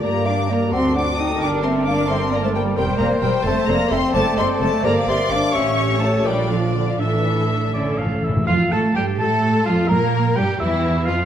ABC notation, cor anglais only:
X:1
M:6/8
L:1/8
Q:3/8=86
K:F
V:1 name="Cor anglais"
d3 d3 | d6 | c3 c2 z | d3 d3 |
e3 d3 | e3 d f e | f a g a2 f | B2 g e2 f |]